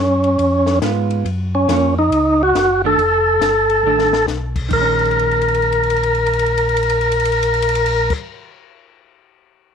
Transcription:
Already playing: F#2 C#4
0.24 ride
0.38 F2, ride
0.66 snare
0.82 G#2 G#3 B3 F4, snare, hi-hat pedal, ride
1.10 ride
1.25 F#2, ride
1.55 C#4
1.68 F2 F3 A#3 C#4, snare, hi-hat pedal, ride
1.99 D#4
2.10 C#2, ride
2.43 F#4
2.54 F#1, snare, hi-hat pedal, ride
2.84 D#3 A3 D4 A4
2.97 F1, ride
3.41 G1, snare, hi-hat pedal, ride
3.70 ride
3.84 A1 D#3 A3 D4
3.99 snare
4.13 snare
4.27 B1, snare, hi-hat pedal
4.56 kick, crash
4.69 A#1 D#3, kick, crash
4.73 G#3 A#4
4.81 C#4
4.99 crash
5.05 ride
5.11 crash
5.19 ride
5.31 crash
5.42 ride
5.48 crash
5.54 ride
5.62 crash
5.72 ride
5.83 crash
5.90 ride
5.96 crash
6.03 ride
6.15 crash
6.26 ride
6.33 crash
6.39 ride
6.46 crash
6.58 ride
6.69 crash
6.77 ride
6.83 crash
6.89 ride
7.01 crash
7.12 ride
7.20 crash
7.25 ride
7.32 crash
7.43 ride
7.54 crash
7.62 ride
7.69 crash
7.75 ride
7.86 crash
8.10 kick, crash

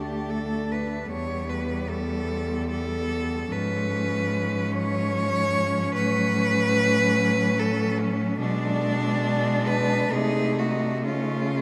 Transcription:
Already playing: D2 A3 D4 G4
0.30 A4
0.72 B4
1.11 E2 G3 B3 C#5
1.50 B4
1.90 A4
2.70 A4
3.52 G#2 F3 C#4 B4
4.72 C#5
5.95 A2 F#3 B4
7.59 A4
8.00 C#4
8.40 B2 G#3 D4
9.67 B4
10.12 C3 A3 D#4 G#4
10.59 F#4
11.04 C#3 C#4 F4

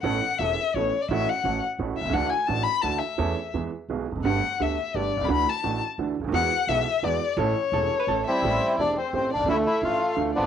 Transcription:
0.03 A1 A2 E3 B3 C#4 A4 F#5
0.38 E1 E2 E3 B3 C#4 A4 E5
0.74 A1 A2 E3 B3 C#4 A4 C#5
1.02 D5
1.09 A1 A2 E3 A3 C#4 F#4 E5
1.30 F#5
1.44 A1 A2 E3 A3 C#4 F#4
1.79 A1 A2 E3 A3 C#4 F#4
1.97 B1 E5
2.01 B1 C2
2.05 C2 C#2
2.13 D2 D3 E3 A3 D4 F#4 F#5
2.30 G#5
2.47 A1 A2 E3 A3 D4 F#4 A5
2.64 B5
2.82 D2 D3 E3 A3 D4 F#4 A5
2.99 E5
3.18 E2 E3 A3 C#4 A4
3.54 E2 E3 G#3 B3 G#4
3.89 B1 B2 E3 G#3 B3 G#4
4.11 E1 E2
4.16 F1 F2
4.20 F#1 F#2
4.24 G1 G2 D3 A3 B3 G4 F#5
4.60 D2 D3 A3 B3 G4 E5
4.94 G1 G2 D3 A3 B3 G4 D5
5.16 B1
5.21 C2 C#2 B5
5.28 D2 D3 E3 A3 D4 F#4 B5
5.49 A5
5.63 A1 A2 E3 A3 D4 F#4
5.98 D2 D3 E3 A3 D4 F#4
6.20 C#2
6.24 D2 D#2
6.28 D#2 E2
6.33 E2 E3 G#3 B3 F#4 F#5
6.67 B1 B2 E3 G#3 B3 F#4 E5
7.03 E2 E3 G#3 B3 F#4 D5
7.37 A1 A2 E3 A3 C#4 A4 C#5
7.72 E1 E2 E3 A3 C#4 A4
8.00 B4
8.07 A1 A2 E3 A3 C#4 A4
8.27 G3 C4 E4 E5
8.42 A1 A2 E3 A3 C4 G4
8.78 E1 E2 E3 A3 C4 D4 G4 D5
8.97 C4 C5
9.13 A1 A2 E3 A3 C4 G4 C5
9.33 B1 D4 D5
9.39 C2
9.43 C#2
9.48 D2 D3 E3 A3 D4 E4 F4 E5
9.67 E4 E5
9.82 A1 A2 E3 A3 D4 F4 F5
10.16 D2 D3 E3 A3 D4 F4
10.35 G#1 F3 B3 D4 D5
10.42 A1

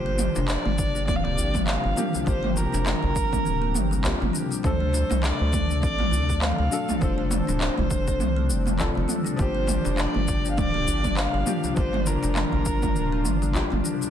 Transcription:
Already playing: G1 F3 A#3 D4 G4 C5
0.06 A#3
0.18 F3, mid tom, djembe slap, djembe tone, shaker
0.36 F1 D4, djembe slap, shaker
0.48 D4 D5, clap, shaker
0.65 G1 G3, mid tom
0.78 D3, kick, djembe tone, shaker
0.95 D4, shaker
1.07 D1 C4 D5, kick, mid tom, shaker
1.16 F5
1.24 A#3 D5, djembe tone
1.37 G1 F3, djembe bass, shaker
1.54 G3, kick, mid tom, shaker
1.67 A#3 F5, clap, shaker
1.84 G1 G3
1.96 F3 A#3 D4 G4, mid tom, shaker
2.13 G3, djembe tone, shaker
2.24 G1 F3 G3 A#3 C4 C5, kick, shaker
2.29 G4
2.43 A#3, mid tom
2.56 F3 A#4, djembe slap, djembe tone, shaker
2.73 F1 D4, djembe slap, shaker
2.86 D4, clap, mid tom, shaker
3.03 G1 G3, djembe bass
3.15 D3, kick, djembe tone, shaker
3.32 D4, kick, mid tom, shaker
3.45 D1 C4, shaker
3.62 A#3
3.74 G1 F3, mid tom, djembe slap, shaker
3.91 G3, djembe tone, shaker
4.03 F3 A#3 G4, clap, djembe bass, shaker
4.20 G1 G3, mid tom, djembe slap
4.33 D4, shaker
4.51 G3, djembe slap, shaker
4.62 D2 F#3 A3 D4 A4 C5, kick, mid tom, shaker
4.66 A4
4.80 A3
4.93 F3, djembe slap, djembe tone, shaker
5.10 C2 D4, mid tom, djembe slap, shaker
5.22 D4 D5, clap, shaker
5.39 D2 F#3
5.52 D3, kick, mid tom, djembe tone, shaker
5.69 D4, shaker
5.82 A1 C4 D5, kick, shaker
5.99 A3, mid tom, djembe tone
6.11 D2 F3, djembe bass, shaker
6.29 F#3, kick, shaker
6.41 A3 F5, clap, mid tom, shaker
6.59 D2 F#3
6.71 F#3 D4 A4, shaker
6.88 F#3, mid tom, djembe tone, shaker
7.00 F1 F3 G3 C4 D4 A4 C5, kick, shaker
7.18 A3
7.31 F3 C5, mid tom, djembe slap, djembe tone, shaker
7.47 D1 D4, djembe slap, shaker
7.60 D4, clap, shaker
7.78 F1 G3, mid tom, djembe bass
7.90 D3, kick, djembe tone, shaker
8.08 D4, kick, shaker
8.20 C2 C4, mid tom, shaker
8.37 A3
8.49 F1 G3, djembe slap, shaker
8.66 A3, mid tom, djembe tone, shaker
8.79 F3 D4 A4, clap, djembe bass, shaker
8.95 F1 A3, djembe slap
9.08 G3, mid tom, shaker
9.25 D4, djembe slap, shaker
9.36 G1 F3 G3 A#3 G4 C5, kick, shaker
9.41 G4
9.55 A#3
9.67 F3, mid tom, djembe slap, djembe tone, shaker
9.85 F1 D4, djembe slap, shaker
9.98 D4 D5, clap, shaker
10.14 G1 G3, mid tom
10.27 D3, kick, djembe tone, shaker
10.45 D4, shaker
10.51 F5
10.57 D1 A#3 D5, kick, mid tom, shaker
10.74 A#3, djembe tone
10.87 G1 F3, djembe bass, shaker
11.04 G3, kick, mid tom, shaker
11.17 A#3 F5, clap, shaker
11.34 G1 G3
11.46 F3 A#3 D4 G4, mid tom, shaker
11.64 G3, djembe tone, shaker
11.75 G1 F3 G3 A#3 F4 C5, kick, shaker
11.79 G4
11.93 A#3, mid tom
12.06 F3 A#4, djembe slap, djembe tone, shaker
12.23 F1 D4, djembe slap, shaker
12.36 D4, clap, mid tom, shaker
12.52 G1 G3, djembe bass
12.65 D3, kick, djembe tone, shaker
12.82 D4, kick, mid tom, shaker
12.96 D1 A#3, shaker
13.12 A#3
13.25 G1 F3, mid tom, djembe slap, shaker
13.42 G3, djembe tone, shaker
13.54 F3 A#3 G4, clap, djembe bass, shaker
13.71 G1 G3, mid tom, djembe slap
13.84 D4, shaker
14.01 G3, djembe slap, shaker

